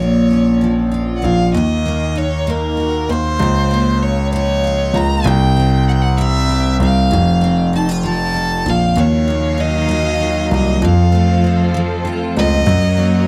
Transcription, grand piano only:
0.00 1.20 A#1 medium
1.24 1.53 A#1 medium
1.54 3.05 D#2 medium
3.09 3.38 D#2 medium
3.40 4.90 C#2 medium
4.93 5.23 C#2 medium
5.25 6.76 C2 medium
6.80 7.09 C2 medium
7.12 8.62 F1 medium
8.66 8.95 A#1 medium
8.97 10.47 D#2 medium
10.51 10.80 C2 medium
10.82 12.32 F2 medium
12.37 12.66 C#2 medium
12.67 13.28 F#2 loud

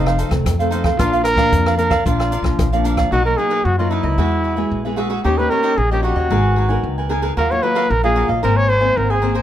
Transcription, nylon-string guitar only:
0.00 0.43 F2 medium
0.00 0.17 D#3 medium
0.00 0.18 A3 medium
0.00 0.18 C4 medium
0.30 0.54 D#3 medium
0.30 0.54 A3 medium
0.30 0.54 C4 medium
0.45 0.96 C3 medium
0.60 0.95 D#3 medium
0.60 0.95 A3 medium
0.60 0.95 C4 medium
0.98 1.49 A#2 medium
0.98 1.35 F3 medium
0.98 1.35 A#3 medium
0.98 1.35 D4 medium
1.37 1.74 F3 medium
1.37 1.74 A#3 medium
1.37 1.74 D4 medium
1.52 2.03 F2 medium
1.78 1.94 F3 medium
1.78 1.94 A#3 medium
1.78 1.95 D4 medium
2.05 2.56 A#2 medium
2.05 2.30 F3 medium
2.05 2.31 A#3 medium
2.05 2.31 D4 medium
2.43 2.67 F3 medium
2.43 2.67 A#3 medium
2.43 2.67 D4 medium
2.58 3.09 F2 medium
2.73 3.08 F3 medium
2.73 3.08 A#3 medium
2.73 3.08 D4 medium
3.12 3.63 B2 medium
3.12 3.20 F#3 medium
3.12 3.20 A#3 medium
3.12 3.21 D#4 medium
3.26 3.35 F#3 medium
3.26 3.35 A#3 medium
3.26 3.35 D#4 medium
3.38 3.74 F#3 medium
3.38 3.74 A#3 medium
3.38 3.74 D#4 medium
3.66 4.16 F#2 medium
3.79 4.15 F#3 medium
3.79 4.15 A#3 medium
3.79 4.15 D#4 medium
4.19 4.69 E3 medium
4.19 4.54 G#3 medium
4.19 4.54 B3 medium
4.19 4.55 F#4 medium
4.57 4.80 G#3 medium
4.57 4.80 B3 medium
4.57 4.80 F#4 medium
4.85 4.94 G#3 medium
4.85 4.94 B3 medium
4.85 4.94 F#4 medium
4.98 5.22 G#3 medium
4.98 5.23 B3 medium
4.98 5.23 F#4 medium
5.25 5.75 D#3 medium
5.25 5.34 A#3 medium
5.25 5.34 C#4 soft
5.25 5.34 G4 medium
5.39 5.47 A#3 medium
5.39 5.48 C#4 medium
5.39 5.48 G4 medium
5.51 5.76 A#3 medium
5.51 5.76 C#4 medium
5.51 5.76 G4 medium
5.78 6.29 A#2 medium
5.92 6.27 A#3 medium
5.92 6.27 C#4 medium
5.92 6.27 G4 medium
6.31 6.81 G#3 medium
6.31 6.66 B3 medium
6.31 6.67 D#4 medium
6.31 6.67 A#4 medium
6.69 7.06 B3 medium
6.69 7.06 D#4 medium
6.69 7.06 A#4 medium
6.84 7.35 D#3 medium
7.10 7.27 B3 medium
7.10 7.28 D#4 medium
7.10 7.28 A#4 medium
7.37 7.88 D#3 medium
7.37 7.46 F#3 medium
7.37 7.47 A#3 medium
7.37 7.47 F4 medium
7.51 7.60 F#3 medium
7.51 7.60 A#3 medium
7.51 7.60 F4 medium
7.63 7.88 F#3 medium
7.63 7.88 A#3 medium
7.63 7.89 F4 medium
7.90 8.41 A#2 medium
8.03 8.39 F#3 medium
8.03 8.39 A#3 medium
8.03 8.40 F4 medium
8.43 8.94 G#2 medium
8.43 8.68 D#3 medium
8.43 8.68 A#3 medium
8.43 8.69 C4 medium
8.81 8.95 D#3 medium
8.81 9.18 A#3 medium
8.81 9.18 C4 medium
8.96 9.21 D#3 medium
9.22 9.40 D#3 medium
9.22 9.40 A#3 medium
9.22 9.40 C4 medium

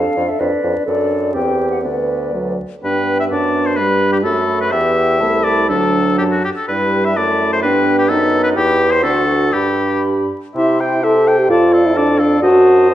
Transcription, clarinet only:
0.00 0.41 A4 soft
0.40 0.86 B4 medium
0.86 1.35 A4 soft
1.34 1.82 G4 soft
1.83 2.57 B4 soft
2.83 3.27 D4 soft
3.30 4.25 D4 soft
4.23 4.74 F#4 soft
4.72 5.22 G4 soft
5.20 5.44 E4 soft
5.44 5.71 E4 soft
5.69 6.43 D4 soft
6.68 7.66 E4 soft
7.64 8.09 D4 soft
8.10 8.57 D#4 soft
8.56 9.04 E4 soft
9.03 9.26 F#4 medium
9.27 9.52 F#4 soft
9.53 10.29 G4 soft
10.55 10.81 G4 soft
10.80 11.05 C5 soft
11.04 11.28 G4 soft
11.26 11.49 C5 soft
11.50 11.75 A4 soft
11.73 11.98 D5 soft
11.96 12.22 A4 soft
12.20 12.42 D5 soft
12.43 12.94 C5 soft

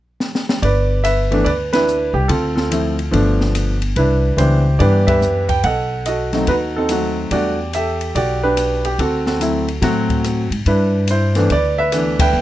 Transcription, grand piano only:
0.62 1.04 B4 medium
0.62 1.05 D5 medium
1.04 1.45 B4 medium
1.04 1.47 E5 medium
1.31 1.44 E3 medium
1.31 1.45 A3 medium
1.31 1.45 B3 medium
1.31 1.45 D4 medium
1.45 1.71 B4 medium
1.45 1.51 D5 medium
1.73 2.26 D4 medium
1.73 2.26 E4 medium
1.73 2.12 B4 loud
2.14 2.28 G4 medium
2.28 2.55 C4 medium
2.28 2.55 F4 medium
2.28 2.54 A4 medium
2.56 2.70 C4 soft
2.56 3.36 F4 soft
2.56 3.36 A4 medium
2.71 2.96 F3 medium
2.71 2.96 A3 medium
2.71 2.96 C4 medium
2.71 2.97 E4 medium
3.11 3.76 F3 medium
3.11 3.76 A3 medium
3.11 3.76 B3 medium
3.11 3.77 D4 medium
3.97 4.38 D4 medium
3.97 4.38 E4 medium
3.97 4.40 B4 medium
4.37 4.62 E3 medium
4.37 4.63 G3 soft
4.37 4.63 B3 soft
4.37 4.63 D4 medium
4.37 5.19 E4 medium
4.37 4.80 G4 medium
4.37 4.81 C5 medium
4.79 5.44 E3 medium
4.79 5.44 G3 medium
4.79 5.44 B3 medium
4.79 5.45 D4 medium
4.79 5.07 G4 medium
4.79 5.07 B4 medium
4.79 5.08 D5 medium
5.07 5.60 G4 medium
5.07 5.61 B4 medium
5.07 5.46 E5 medium
5.49 5.63 G5 medium
5.64 6.06 A4 medium
5.64 6.05 D#5 medium
5.64 6.07 F#5 loud
6.06 6.48 F#4 medium
6.06 6.75 A4 medium
6.06 6.45 D#5 medium
6.33 6.46 F#3 medium
6.33 6.46 A3 medium
6.33 6.47 C4 medium
6.33 6.47 D#4 medium
6.48 6.76 D#4 medium
6.48 6.90 F#4 medium
6.48 6.54 B4 medium
6.76 6.89 C4 medium
6.76 7.29 D#4 medium
6.76 7.15 A4 medium
6.90 7.31 F#3 medium
6.90 7.30 A3 soft
6.90 7.32 C4 soft
6.90 7.31 F#4 medium
7.31 7.56 G3 medium
7.31 7.56 A3 medium
7.31 7.56 D4 medium
7.31 7.57 F#4 medium
7.31 7.74 G4 medium
7.31 7.71 D5 medium
7.75 8.15 G4 medium
7.75 8.54 A4 medium
7.75 8.13 E5 medium
8.15 8.96 F#4 medium
8.15 8.42 G4 medium
8.15 8.41 D5 medium
8.43 8.96 D4 medium
8.43 8.84 G4 medium
8.43 8.82 B4 medium
8.85 8.98 G4 medium
9.00 9.25 C4 medium
9.00 9.25 F#4 medium
9.00 9.25 A4 medium
9.27 9.40 C4 medium
9.27 9.82 F#4 soft
9.27 10.06 A4 medium
9.40 9.65 F#3 medium
9.40 9.65 A3 medium
9.40 9.65 C4 soft
9.40 9.66 E4 medium
9.82 10.46 F#3 medium
9.82 10.46 A3 medium
9.82 10.47 C4 medium
9.82 10.47 F#4 medium
10.67 11.36 D4 medium
10.67 11.09 E4 medium
10.67 11.06 B4 medium
11.10 11.89 E4 medium
11.10 11.53 C5 medium
11.36 11.49 E3 medium
11.36 11.49 A3 medium
11.36 11.49 B3 medium
11.36 11.50 D4 medium
11.52 11.78 B4 medium
11.52 11.77 D5 medium
11.78 12.20 B4 medium
11.78 12.20 E5 loud
11.92 12.41 E3 medium
11.92 12.41 A3 medium
11.92 12.41 B3 medium
11.92 12.41 D4 medium
12.20 12.41 B4 medium
12.20 12.41 E5 medium
12.20 12.41 G5 loud

